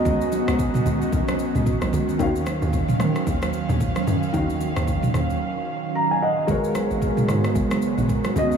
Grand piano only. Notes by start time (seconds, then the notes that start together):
Already playing: C#3 B3 F#4 D#5
2.19 D#3 C#4 F#4 F5
4.33 D#3 C#4 F#4
4.37 F5
5.95 A#5
6.11 G#5
6.22 D#5 F#5
6.38 F5
6.47 G#3 F#4 A#4 B4
6.51 C#5
8.34 C#3 B3 F#4
8.38 D#5